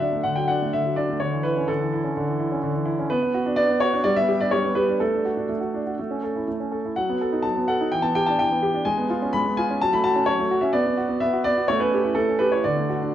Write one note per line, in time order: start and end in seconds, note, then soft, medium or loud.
0.00 0.23 D3 soft
0.00 0.20 D4 soft
0.00 0.25 E5 medium
0.12 0.32 A3 soft
0.23 0.72 D3 soft
0.23 0.37 F#5 medium
0.36 0.56 F#3 soft
0.36 0.49 G5 medium
0.48 0.69 D4 soft
0.48 0.73 F#5 medium
0.62 0.81 A3 soft
0.73 1.20 D3 soft
0.73 0.97 E5 medium
0.86 1.05 F#3 soft
0.96 1.16 D4 soft
0.96 1.21 D5 medium
1.09 1.21 A3 soft
1.20 1.68 D3 soft
1.20 1.44 C#5 medium
1.33 1.52 E3 soft
1.43 1.64 E4 soft
1.43 1.68 B4 medium
1.57 1.76 C#4 soft
1.68 2.15 D3 soft
1.68 2.87 A4 medium
1.81 1.99 E3 soft
1.93 2.12 E4 soft
2.04 2.23 C#4 soft
2.17 2.62 D3 soft
2.28 2.47 E3 soft
2.39 2.58 E4 soft
2.52 2.71 C#4 soft
2.63 3.10 D3 soft
2.75 2.94 E3 soft
2.86 3.06 E4 medium
2.99 3.11 C#4 soft
3.10 3.21 B3 medium
3.10 3.58 B4 medium
3.23 3.42 B3 soft
3.34 3.53 F#4 soft
3.46 3.65 D4 soft
3.56 3.68 B3 soft
3.56 3.81 D5 medium
3.69 3.88 B3 soft
3.80 4.00 F#4 medium
3.80 4.04 C#5 medium
3.93 4.05 D4 soft
4.04 4.51 G3 medium
4.04 4.16 D5 medium
4.16 4.36 B3 soft
4.16 4.40 E5 medium
4.29 4.48 G4 soft
4.41 4.60 D4 soft
4.41 4.53 D5 medium
4.51 5.00 G3 soft
4.51 4.76 C#5 medium
4.65 4.84 B3 soft
4.75 4.96 G4 soft
4.75 5.00 B4 medium
4.88 5.01 D4 soft
5.00 5.47 A3 soft
5.00 6.22 A4 medium
5.14 5.33 D4 soft
5.25 5.45 F#4 soft
5.37 5.57 D4 soft
5.49 5.96 A3 soft
5.61 5.81 F#4 soft
5.74 5.94 D4 soft
5.87 5.99 F#4 soft
5.99 6.46 A3 soft
6.11 6.30 C#4 soft
6.23 6.42 A4 soft
6.36 6.55 E4 soft
6.48 6.95 A3 soft
6.60 6.79 C#4 soft
6.72 6.91 A4 soft
6.85 6.97 E4 soft
6.96 7.42 F#3 soft
6.96 7.44 F#5 medium
7.09 7.28 B3 soft
7.21 7.40 A4 soft
7.32 7.51 D#4 soft
7.42 7.90 F#3 soft
7.42 7.67 A5 medium
7.57 7.75 B3 soft
7.68 7.87 A4 soft
7.68 7.92 F#5 medium
7.81 7.92 D#4 soft
7.92 8.39 E3 medium
7.92 8.04 G5 medium
8.02 8.22 B3 soft
8.02 8.15 A5 medium
8.15 8.35 G4 soft
8.15 8.27 G5 medium
8.26 8.47 D4 soft
8.26 8.39 A5 medium
8.39 8.86 E3 soft
8.39 8.87 G5 medium
8.51 8.70 B3 soft
8.63 8.82 G4 soft
8.74 8.86 D4 soft
8.85 9.33 G#3 medium
8.85 9.33 G#5 medium
8.98 9.17 B3 soft
9.10 9.29 F4 soft
9.22 9.41 C#4 soft
9.33 9.80 G#3 soft
9.33 9.57 B5 medium
9.46 9.65 B3 soft
9.57 9.77 F4 medium
9.57 9.81 G#5 medium
9.71 9.82 C#4 soft
9.82 10.26 F#3 medium
9.82 9.93 A5 medium
9.93 10.12 A3 soft
9.93 10.05 B5 medium
10.04 10.23 F#4 medium
10.04 10.28 A5 medium
10.16 10.35 C#4 soft
10.26 10.73 F#3 soft
10.26 10.62 C#5 medium
10.39 10.58 A3 soft
10.51 10.70 F#4 medium
10.61 10.74 C#4 soft
10.61 10.74 E5 medium
10.73 10.85 B3 medium
10.73 11.21 D5 medium
10.86 11.05 B3 soft
10.97 11.16 F#4 soft
11.09 11.20 B3 soft
11.20 11.44 B3 medium
11.20 11.45 E5 medium
11.33 11.52 F#4 soft
11.44 11.64 B3 medium
11.44 11.69 D5 medium
11.57 11.69 F#4 soft
11.68 12.14 A3 medium
11.68 11.80 C#5 medium
11.80 12.00 C#4 soft
11.80 12.16 B4 medium
11.94 12.13 G4 soft
12.05 12.24 E4 soft
12.15 12.64 A3 medium
12.15 12.40 A4 medium
12.29 12.48 C#4 soft
12.39 12.60 G4 soft
12.39 12.52 B4 medium
12.52 12.65 E4 soft
12.52 12.65 C#5 medium
12.64 13.13 D3 soft
12.64 13.15 D5 medium
12.76 12.97 A3 soft
12.89 13.10 F#4 soft
13.02 13.15 D4 soft